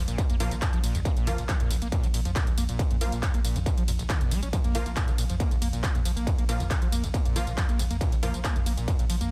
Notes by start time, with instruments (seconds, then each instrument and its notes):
0.08 sub bass A#1, acid bass A#2, closed hi-hat, tambourine
0.18 acid bass A#1, kick, closed hi-hat, ride, tambourine
0.29 sub bass A#1, acid bass A#3, closed hi-hat, mid tom, tambourine
0.40 sub bass A#1, acid bass A#2, synth stab F3 A#3 F4, open hi-hat, ride, tambourine
0.51 sub bass A#1, acid bass F3, closed hi-hat, tambourine
0.62 acid bass A#2, kick, clap, closed hi-hat, mid tom, ride, tambourine
0.73 sub bass A#1, acid bass F3, closed hi-hat, tambourine
0.83 sub bass A#1, acid bass A#2, open hi-hat, ride, tambourine
0.95 acid bass A#1, sub bass A#1, closed hi-hat, mid tom, tambourine
1.05 acid bass A#3, kick, closed hi-hat, ride, tambourine
1.16 sub bass A#1, acid bass A#2, closed hi-hat, tambourine
1.27 sub bass A#1, synth stab F3 A#3 F4, acid bass F3, mid tom, open hi-hat, ride, tambourine
1.38 sub bass A#1, acid bass A#2, closed hi-hat, tambourine
1.49 acid bass F3, kick, clap, closed hi-hat, ride, tambourine
1.60 sub bass A#1, acid bass A#2, closed hi-hat, mid tom, tambourine
1.71 sub bass A#1, acid bass A#1, open hi-hat, ride, tambourine
1.82 sub bass A#1, acid bass A#3, closed hi-hat, tambourine
1.92 acid bass A#2, kick, closed hi-hat, mid tom, ride, tambourine
2.03 sub bass A#1, acid bass F3, closed hi-hat, tambourine
2.14 sub bass A#1, acid bass A#2, open hi-hat, ride, tambourine
2.25 sub bass A#1, acid bass F3, closed hi-hat, mid tom, tambourine
2.36 acid bass A#2, kick, clap, closed hi-hat, ride, tambourine
2.47 acid bass A#1, sub bass A#1, closed hi-hat, tambourine
2.57 sub bass A#1, acid bass A#3, mid tom, open hi-hat, ride, tambourine
2.69 sub bass A#1, acid bass A#2, closed hi-hat, tambourine
2.79 acid bass F3, kick, closed hi-hat, ride, tambourine
2.90 sub bass A#1, acid bass A#2, closed hi-hat, mid tom, tambourine
3.01 sub bass A#1, acid bass F3, synth stab F3 A#3 F4, open hi-hat, ride, tambourine
3.12 sub bass A#1, acid bass A#2, closed hi-hat, tambourine
3.23 acid bass A#1, kick, clap, closed hi-hat, mid tom, ride, tambourine
3.34 sub bass A#1, acid bass A#3, closed hi-hat, tambourine
3.44 sub bass A#1, acid bass A#2, open hi-hat, ride, tambourine
3.56 sub bass A#1, acid bass F3, closed hi-hat, mid tom, tambourine
3.66 acid bass A#2, kick, closed hi-hat, ride, tambourine
3.77 sub bass A#1, acid bass F3, closed hi-hat, tambourine
3.88 sub bass A#1, acid bass A#2, mid tom, open hi-hat, ride, tambourine
3.99 acid bass A#1, sub bass A#1, closed hi-hat, tambourine
4.10 acid bass D#3, kick, clap, closed hi-hat, ride, tambourine
4.21 sub bass A#1, acid bass A#2, closed hi-hat, mid tom, tambourine
4.31 sub bass A#1, acid bass G#3, open hi-hat, ride, tambourine
4.43 sub bass A#1, acid bass C#4, closed hi-hat, tambourine
4.53 acid bass F3, kick, closed hi-hat, ride, tambourine
4.64 sub bass A#1, acid bass A#3, closed hi-hat, mid tom, tambourine
4.75 acid bass A#1, sub bass A#1, synth stab F3 A#3 F4, open hi-hat, ride, tambourine
4.86 sub bass A#1, acid bass A#3, closed hi-hat, tambourine
4.96 acid bass A#2, kick, clap, closed hi-hat, mid tom, ride, tambourine
5.08 sub bass A#1, acid bass F3, closed hi-hat, tambourine
5.18 sub bass A#1, acid bass A#2, open hi-hat, ride, tambourine
5.29 sub bass A#1, acid bass F3, closed hi-hat, mid tom, tambourine
5.40 acid bass A#3, kick, closed hi-hat, ride, tambourine
5.51 acid bass A#1, sub bass A#1, closed hi-hat, tambourine
5.62 sub bass A#1, acid bass A#3, mid tom, open hi-hat, ride, tambourine
5.73 sub bass A#1, acid bass A#2, closed hi-hat, tambourine
5.83 acid bass F3, kick, clap, closed hi-hat, ride, tambourine
5.95 sub bass A#1, acid bass A#2, closed hi-hat, mid tom, tambourine
6.05 sub bass A#1, acid bass F3, open hi-hat, ride, tambourine
6.16 sub bass A#1, acid bass A#3, closed hi-hat, tambourine
6.27 acid bass A#1, kick, closed hi-hat, mid tom, ride, tambourine
6.38 sub bass A#1, acid bass A#3, closed hi-hat, tambourine
6.49 sub bass A#1, acid bass A#2, synth stab F3 A#3 F4, open hi-hat, ride, tambourine
6.60 sub bass A#1, acid bass F3, closed hi-hat, mid tom, tambourine
6.70 acid bass A#2, kick, clap, closed hi-hat, ride, tambourine
6.82 sub bass A#1, acid bass F3, closed hi-hat, tambourine
6.92 sub bass A#1, acid bass A#3, mid tom, open hi-hat, ride, tambourine
7.03 acid bass A#1, sub bass A#1, closed hi-hat, tambourine
7.14 acid bass A#3, kick, closed hi-hat, ride, tambourine
7.25 sub bass A#1, acid bass A#2, closed hi-hat, mid tom, tambourine
7.36 sub bass A#1, acid bass F3, synth stab F3 A#3 F4, open hi-hat, ride, tambourine
7.47 sub bass A#1, acid bass A#2, closed hi-hat, tambourine
7.57 acid bass F3, kick, clap, closed hi-hat, mid tom, ride, tambourine
7.69 sub bass A#1, acid bass A#3, closed hi-hat, tambourine
7.79 acid bass A#1, sub bass A#1, open hi-hat, ride, tambourine
7.90 sub bass A#1, acid bass A#3, closed hi-hat, mid tom, tambourine
8.01 acid bass A#2, kick, closed hi-hat, ride, tambourine
8.12 sub bass A#1, acid bass F3, closed hi-hat, tambourine
8.23 sub bass A#1, acid bass A#2, synth stab F3 A#3 F4, mid tom, open hi-hat, ride, tambourine
8.34 sub bass A#1, acid bass F3, closed hi-hat, tambourine
8.44 acid bass A#3, kick, clap, closed hi-hat, ride, tambourine
8.56 sub bass A#1, acid bass A#1, closed hi-hat, mid tom, tambourine
8.66 sub bass A#1, acid bass A#3, open hi-hat, ride, tambourine
8.77 sub bass A#1, acid bass A#2, closed hi-hat, tambourine
8.88 acid bass F3, kick, closed hi-hat, mid tom, ride, tambourine
8.99 sub bass A#1, acid bass A#2, closed hi-hat, tambourine
9.10 sub bass A#1, acid bass F3, open hi-hat, ride, tambourine
9.21 sub bass A#1, acid bass A#3, closed hi-hat, mid tom, tambourine